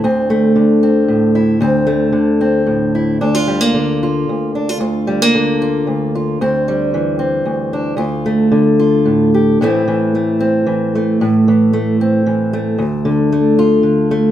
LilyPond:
\new Staff \with { instrumentName = "Steel-string acoustic guitar" } { \time 3/4 \key d \minor \tempo 4 = 114 << { c'8 a4 c'4 e'8 | c'8 a4 c'4 e'8 | d'16 f'16 g16 bes8. f'4 d'16 f'16 | f'8 g16 bes8. f'4 f'8 |
c'8 g4 c'4 d'8 | f'8 a4 f'4 g'8 | <e a c' e'>4 a8 c'4 a8 | r4 a8 c'4 a8 |
r4 a8 f'4 a8 | } \\ { <d, d>4 d4 a,4 | d,4 d4 a,4 | d,4 d4 d,4 | d,4 d4 d,4 |
d,4 e4 d,4 | d,4 d4 a,4 | a,8 e4. e4 | a,8 e4. e4 |
d,8 d4. d4 | } >> }